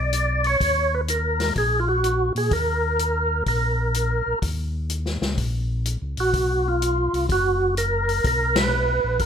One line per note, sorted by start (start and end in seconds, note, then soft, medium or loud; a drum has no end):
0.00 0.56 B1 medium
0.00 0.46 D5 medium
0.13 closed hi-hat medium
0.44 0.95 C#5 loud
0.44 open hi-hat soft
0.61 1.52 D#2 medium
0.61 kick soft
0.61 open hi-hat soft
0.94 1.01 B4 medium
1.08 1.53 A#4 medium
1.08 closed hi-hat medium
1.40 snare soft
1.40 open hi-hat soft
1.55 2.31 A#1 medium
1.55 1.80 G#4 medium
1.55 kick soft
1.55 open hi-hat soft
1.80 1.88 F4 medium
1.89 2.33 F#4 medium
2.04 closed hi-hat medium
2.35 2.50 A#2 medium
2.35 2.53 G#4 medium
2.35 open hi-hat soft
2.51 3.43 D#2 medium
2.51 3.44 A#4 medium
2.51 kick soft
2.51 open hi-hat soft
2.99 closed hi-hat soft
3.46 4.22 A#1 medium
3.46 4.39 A#4 medium
3.46 kick soft
3.46 open hi-hat soft
3.94 closed hi-hat soft
4.26 4.34 A#1 soft
4.42 5.18 D#2 medium
4.42 kick soft
4.42 open hi-hat soft
4.90 closed hi-hat soft
5.06 snare soft
5.21 5.37 C#2 medium
5.21 snare soft
5.37 5.97 A#1 medium
5.37 kick soft
5.37 open hi-hat soft
5.86 closed hi-hat soft
6.02 6.16 C#2 medium
6.17 6.32 A#1 medium
6.17 6.68 F#4 medium
6.17 open hi-hat soft
6.33 7.09 B1 medium
6.33 kick soft
6.33 open hi-hat soft
6.68 7.26 F4 medium
6.82 closed hi-hat medium
7.13 7.28 C2 medium
7.13 open hi-hat soft
7.29 8.20 F#1 medium
7.29 7.75 F#4 medium
7.29 kick soft
7.29 open hi-hat soft
7.77 8.26 A#4 medium
7.77 closed hi-hat soft
8.09 open hi-hat soft
8.24 9.00 B1 medium
8.24 8.58 A#4 loud
8.24 kick soft
8.24 open hi-hat soft
8.56 9.22 B4 loud
8.56 snare medium
8.56 ride medium
9.04 9.18 A#1 medium
9.19 9.26 F#1 medium
9.19 9.26 A#4 medium
9.19 kick soft
9.19 open hi-hat soft